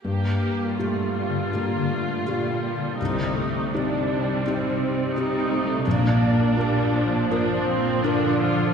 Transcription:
<<
  \new Staff \with { instrumentName = "Felt piano" } { \time 4/4 \key g \minor \tempo 4 = 82 g,4 <bes f' g'>4 <bes f' g'>4 <bes f' g'>4 | c,4 <c' ees' g'>4 <c' ees' g'>4 <c' ees' g'>4 | bes,,4 <d' f' bes'>4 <d' f' bes'>4 <d' f' bes'>4 | }
  \new Staff \with { instrumentName = "Harp" } { \time 4/4 \key g \minor \tuplet 3/2 { g,8 bes8 g'8 f'8 bes8 d8 bes8 d8 g'8 f'8 bes8 d8 } | \tuplet 3/2 { c8 c'8 g'8 ees'8 c'8 g8 c'8 g8 g'8 ees'8 c'8 g8 } | \tuplet 3/2 { bes,8 d'8 bes'8 f'8 d'8 f8 d'8 f8 bes'8 f'8 d'8 f8 } | }
  \new Staff \with { instrumentName = "Viola section" } { \time 4/4 \key g \minor << { g'4 f'2. | ees'4 d'4 c'4 ees'4 | d'2 d'8 c'8 d'8 f'8 | } \\ { bes4 a8 g8 bes8 a8 g4 | g8 a8 g2 g8 a8 | bes4 g8 f4. f4 | } >> }
  \new Staff \with { instrumentName = "Cello section" } { \clef bass \time 4/4 \key g \minor g,2. bes,4 | c1 | bes,2. d4 | }
>>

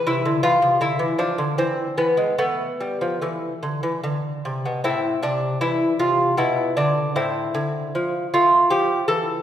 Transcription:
<<
  \new Staff \with { instrumentName = "Lute" } { \time 3/4 \key a \minor \tempo 4 = 77 << { e'8 f'8 e'8 d'8 c'8 b8 | b4 a4 r4 | e'8 d'8 e'8 f'8 e'8 d'8 | e'4. f'8 g'8 a'8 | } \\ { r2. | r2. | c'2 b4 | c'2. | } >> }
  \new Staff \with { instrumentName = "Lute" } { \clef bass \time 3/4 \key a \minor c16 d16 e16 c16 d16 e16 f16 d16 e8 e16 gis16 | a8 g16 f16 e8 d16 e16 d8 c16 b,16 | a,8 c8 e8 c8 b,8 d8 | a,8 d8 f8 a8 f8 e8 | }
>>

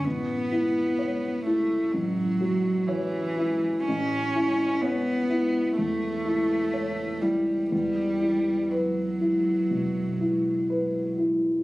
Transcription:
<<
  \new Staff \with { instrumentName = "Upright piano" } { \time 4/4 \key e \dorian \tempo 4 = 62 a,,8 e'8 cis''8 e'8 a,,8 fis8 cis''8 e'8 | a,,8 e'8 cis''8 e'8 e,8 e'8 cis''8 e'8 | e,8 e'8 b'8 e'8 b,8 e'8 b'8 e'8 | }
  \new Staff \with { instrumentName = "Cello" } { \clef bass \time 4/4 \key e \dorian b4. a8 fis4 e4 | cis'4 b4 a4. g8 | g4 fis2~ fis8 r8 | }
>>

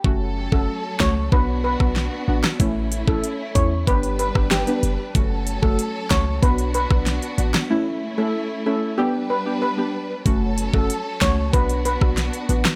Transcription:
<<
  \new Staff \with { instrumentName = "Steel pan" } { \time 4/4 \key fis \phrygian \tempo 4 = 94 r8. a'16 r8 cis''16 r16 b'16 r16 b'16 r4 r16 | r8. a'16 r8 cis''16 r16 b'16 r16 b'16 r16 g'8. r16 | r8. a'16 r8 cis''16 r16 b'16 r16 b'16 r4 r16 | r8. a'16 r8 a'16 r16 g'16 r16 b'16 r16 b'8. r16 |
r8. a'16 r8 cis''16 r16 b'16 r16 b'16 r4 r16 | }
  \new Staff \with { instrumentName = "String section" } { \time 4/4 \key fis \phrygian <fis cis' a'>2 <b d' fis'>2 | <a cis' e'>2 <g d' b'>2 | <fis cis' a'>2 <b d' fis'>2 | <a cis' e'>2 <g d' b'>2 |
<fis cis' a'>2 <b d' fis'>2 | }
  \new Staff \with { instrumentName = "Synth stab" } { \time 4/4 \key fis \phrygian <a cis' fis'>8. <a cis' fis'>16 r8 <a cis' fis'>16 r16 <b d' fis'>8. <b d' fis'>8. <b d' fis'>8 | <a cis' e'>8. <a cis' e'>16 r8 <a cis' e'>16 r16 <b d' g'>8. <b d' g'>16 r16 <b d' g'>16 r8 | <a cis' fis'>8. <a cis' fis'>16 r8 <a cis' fis'>16 r16 <b d' fis'>8. <b d' fis'>8. <b d' fis'>8 | <a cis' e'>8. <a cis' e'>16 r8 <a cis' e'>16 r16 <b d' g'>8. <b d' g'>16 r16 <b d' g'>16 r8 |
<a cis' fis'>8. <a cis' fis'>16 r8 <a cis' fis'>16 r16 <b d' fis'>8. <b d' fis'>8. <b d' fis'>8 | }
  \new Staff \with { instrumentName = "808-style bass" } { \clef bass \time 4/4 \key fis \phrygian fis,,8. fis,,16 r8 cis,8 b,,8. b,,8 r16 a,,16 r16 | a,,8. a,,16 r8 e,8 g,,8. g,,8 r16 fis,,16 r16 | fis,,8. fis,,16 r8 cis,8 b,,8. b,,8 r16 a,,16 r16 | r1 |
fis,,8. fis,,16 r8 cis,8 b,,8. b,,8 r16 a,,16 r16 | }
  \new DrumStaff \with { instrumentName = "Drums" } \drummode { \time 4/4 bd8. bd16 r8 <bd ss sn>8 bd8. <bd ss>16 sn8. <ss sn>16 | <hh bd>8 hh16 bd16 hh8 <hh bd>8 <hh bd>16 hh16 hh16 <bd ss>16 <hh ss sn>16 hh16 hh8 | <hh bd>8 hh16 bd16 hh8 <hh bd ss sn>8 <hh bd>16 hh16 hh16 <bd ss>16 <hh sn>16 hh16 hh16 <ss sn>16 | r4 r4 r4 r4 |
<hh bd>8 hh16 bd16 hh8 <hh bd ss sn>8 <hh bd>16 hh16 hh16 <bd ss>16 <hh sn>16 hh16 hh16 <ss sn>16 | }
>>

